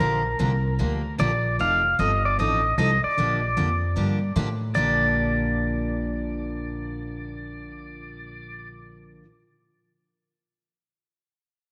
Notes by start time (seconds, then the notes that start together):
Already playing: A#4
0.00 A#1 D3 F3 A#3 D4 G4
0.39 C2 D3 F3 A#3 D4 G4
0.79 D2 D3 F3 A#3 D4 G4
1.18 A#1 D3 F3 A#3 D4 G4 D5
1.59 F1 F3 C4 D#4 A4 F5
1.99 G1 F3 C4 D#4 A4 D#5
2.25 D5
2.39 A1 F3 C4 D#4 A4 D#5
2.78 C2 F3 C4 D#4 A4 D#5
3.04 D5
3.17 A#1 D3 F3 A#3 D4 G4
3.57 F2 D3 F3 A#3 D4 G4
3.96 G2 D3 F3 A#3 D4 G4
4.36 A2 D3 F3 A#3 D4 G4
4.74 A#1 A#2 D3 F3 A#3 D4 G4 D5